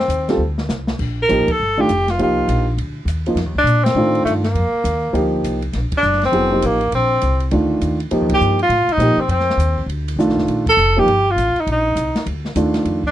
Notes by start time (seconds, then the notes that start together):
Already playing: C4
0.08 D#2, hi-hat pedal, ride
0.29 G3 C4 F4 A4, snare, ride
0.37 D2
0.58 snare
0.69 C2, snare, hi-hat pedal
0.87 snare
0.99 A#1, kick, crash
1.22 A#4
1.29 A1 F3 A#3 D#4 G4, hi-hat pedal, ride
1.47 muted upright bass stroke, kick, ride
1.52 A4
1.60 G1
1.77 D#3 A3 D4 F4 G4
1.89 F1, hi-hat pedal, ride
2.08 F4, snare, ride
2.19 C2 F3 A#3 D#4 F4 G4, ride
2.48 A#1, hi-hat pedal, ride
2.77 D2, ride
3.05 D#2, hi-hat pedal, ride
3.26 F3 A#3 D#4 F4, ride
3.35 F2, snare, ride
3.46 D#2
3.55 C2 D4, kick
3.64 A#2, hi-hat pedal, ride
3.84 C4, snare, ride
3.94 A2 D#3 A3 D4 F4
4.15 ride
4.24 G2 A3, hi-hat pedal, ride
4.44 A#3, snare, ride
4.55 F2, ride
4.72 muted upright bass stroke
4.84 D#2, hi-hat pedal, ride
5.13 D2 F3 A#3 D#4 G4, ride
5.43 C2, hi-hat pedal, ride
5.62 ride
5.73 A#1, snare, ride
5.92 muted upright bass stroke, kick, ride
5.97 D4
6.03 F#1, hi-hat pedal
6.13 snare
6.21 C4, snare, ride
6.32 F1 F#3 B3 E4 G#4, ride
6.51 F3 A#3 D#4 G4
6.62 A1 A#3, hi-hat pedal, ride
6.81 ride
6.92 A#1 C4, ride
7.21 C2, hi-hat pedal, ride
7.40 ride
7.51 D2 D#3 A3 D4 F4, ride
7.81 D#2, hi-hat pedal, ride
8.00 ride
8.11 F2 F3 A#3 D#4 G4, ride
8.21 D#2
8.29 C2, kick, ride
8.34 G4
8.40 G2, hi-hat pedal
8.59 F4, ride
8.69 A2, ride
8.88 muted upright bass stroke, ride
8.92 D#4
8.97 A#2 F3 A#3 D#4, hi-hat pedal, ride
9.02 G4
9.17 C4, muted upright bass stroke
9.28 F2 C4, ride
9.40 snare
9.50 snare
9.57 D#2, hi-hat pedal, ride
9.77 kick
9.86 D2, ride
10.08 ride
10.16 C2 D#3 A3 D4 F4, hi-hat pedal
10.27 A#1, snare
10.36 F1, snare
10.46 A#1, ride
10.66 A4, kick, ride
10.77 F1, hi-hat pedal
10.97 F3 A#3 D#4 G4
11.06 G1, ride
11.30 F4
11.36 A1, hi-hat pedal, ride
11.55 muted upright bass stroke, ride
11.60 D#4
11.67 A#1, ride
11.71 D#4
11.96 C2, hi-hat pedal, ride
12.15 muted upright bass stroke, snare, ride
12.26 D2, ride
12.45 snare
12.55 D#2 D#3 A3 D4 F4, hi-hat pedal, ride
12.74 snare, ride
12.85 F2, ride
13.04 D4, kick